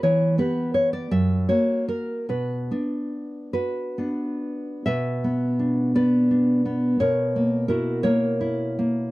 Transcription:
\new Staff \with { instrumentName = "Nylon-string guitar" } { \time 6/8 \key b \minor \tempo 4. = 54 << { cis''8 b'8 cis''16 d''16 e''8 cis''8 ais'8 | b'4. <fis' b'>4. | <b' e''>4. <b' d''>4. | <ais' cis''>4 <fis' ais'>8 <ais' cis''>4. | } \\ { e8 <b g'>4 fis,8 <ais fis'>4 | b,8 <b d'>4. <b d'>4 | b,8 b8 d'8 b8 d'8 b8 | b,8 ais8 e'8 ais8 e'8 ais8 | } >> }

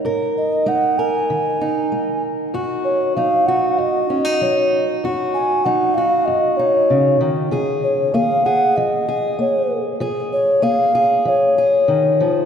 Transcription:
<<
  \new Staff \with { instrumentName = "Ocarina" } { \time 4/4 \key dis \minor \tempo 4 = 96 r8 dis''8 fis''8 gis''2 r8 | r8 cis''8 eis''8 fis''8 dis''4 cis''8. r16 | r8 gis''8 fis''8 eis''8 dis''8 cis''4 r8 | r8 cis''8 eis''8 fis''8 dis''4 cis''8. r16 |
r8 cis''8 eis''4 cis''4. r8 | }
  \new Staff \with { instrumentName = "Steel-string acoustic guitar" } { \time 4/4 \key dis \minor << { ais'4 dis'8 ais'4 dis'4. | fis'4 dis'8 fis'4 cis'16 dis'4~ dis'16 | fis'4 dis'8 fis'4 dis'4. | gis'4 gis'8 gis'4 gis'4. |
gis'4 gis'8 gis'4 gis'4. | } \\ { gis,4 gis4 dis4 gis4 | fis,4 fis4 fis,4 fis4 | fis,4 fis4 fis,4 cis8 dis8 | eis4 ais4 eis4 ais4 |
eis4 ais4 eis4 dis8 eis8 | } >> }
>>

